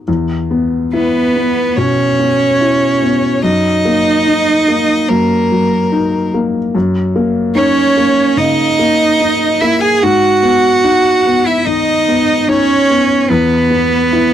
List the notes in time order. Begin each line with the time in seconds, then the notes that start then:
Already playing: D#4
0.08 E2
0.51 B3
0.93 B3 E4 B4
1.36 B3
1.77 B2 C#4 C#5
2.19 B3
2.61 E4
3.02 B3
3.43 F#2 D#4 D#5
3.85 A#3
4.26 D#4
4.68 A#3
5.08 F#2 A#3 A#4
5.52 F#3
5.92 D#4
6.34 A#3
6.75 F#2
7.16 A#3
7.54 C#4 D#4 C#5
7.97 A#3
8.37 C#3 D#4 D#5
8.79 A#3
9.20 D#4
9.60 A#3 E4 E5
9.81 G#4 G#5
10.03 G#2 F#4 F#5
10.43 B3
10.84 D#4
11.26 B3
11.46 E4 E5
11.64 D#3 D#4 D#5
12.09 B3
12.48 C#4 D#4 C#5
12.90 B3
13.30 E2 B3 B4
13.70 B3
14.13 E4